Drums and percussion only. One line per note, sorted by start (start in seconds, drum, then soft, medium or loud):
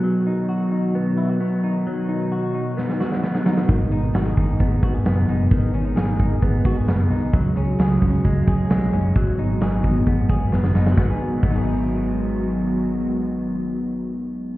2.78 snare medium
2.90 snare medium
3.01 snare medium
3.12 snare medium
3.24 snare medium
3.35 snare medium
3.46 snare loud
3.58 snare loud
3.68 kick loud
3.68 open hi-hat loud
3.91 hi-hat pedal medium
3.91 open hi-hat medium
4.14 snare loud
4.14 hi-hat pedal medium
4.14 open hi-hat medium
4.37 kick medium
4.37 hi-hat pedal medium
4.37 open hi-hat medium
4.59 kick medium
4.59 hi-hat pedal medium
4.59 open hi-hat medium
4.83 kick loud
4.83 hi-hat pedal medium
4.83 open hi-hat medium
5.05 snare loud
5.05 hi-hat pedal medium
5.05 open hi-hat loud
5.29 hi-hat pedal medium
5.29 open hi-hat medium
5.51 kick loud
5.51 hi-hat pedal medium
5.51 open hi-hat medium
5.74 hi-hat pedal medium
5.74 open hi-hat medium
5.96 snare loud
5.96 hi-hat pedal medium
5.96 open hi-hat medium
6.20 kick loud
6.20 hi-hat pedal medium
6.20 open hi-hat medium
6.42 kick medium
6.42 hi-hat pedal medium
6.42 open hi-hat medium
6.65 kick loud
6.65 hi-hat pedal medium
6.65 open hi-hat medium
6.88 snare loud
6.88 hi-hat pedal medium
6.88 open hi-hat loud
7.11 hi-hat pedal medium
7.11 open hi-hat medium
7.33 kick loud
7.33 hi-hat pedal medium
7.33 open hi-hat medium
7.56 hi-hat pedal medium
7.56 open hi-hat medium
7.79 snare loud
7.79 hi-hat pedal medium
7.79 open hi-hat medium
8.02 kick medium
8.02 hi-hat pedal medium
8.02 open hi-hat medium
8.24 kick medium
8.24 hi-hat pedal medium
8.24 open hi-hat medium
8.47 kick loud
8.47 hi-hat pedal medium
8.47 open hi-hat medium
8.70 snare loud
8.70 hi-hat pedal medium
8.70 open hi-hat loud
8.93 hi-hat pedal medium
8.93 open hi-hat medium
9.15 kick loud
9.15 hi-hat pedal medium
9.15 open hi-hat medium
9.38 hi-hat pedal medium
9.38 open hi-hat medium
9.61 snare loud
9.61 hi-hat pedal medium
9.61 open hi-hat medium
9.84 kick medium
9.84 hi-hat pedal medium
9.84 open hi-hat medium
10.06 kick medium
10.06 hi-hat pedal medium
10.06 open hi-hat medium
10.29 kick loud
10.29 hi-hat pedal medium
10.29 open hi-hat medium
10.52 snare medium
10.64 snare medium
10.75 snare medium
10.86 snare loud
10.97 kick loud
10.97 snare loud
11.43 kick loud
11.43 crash medium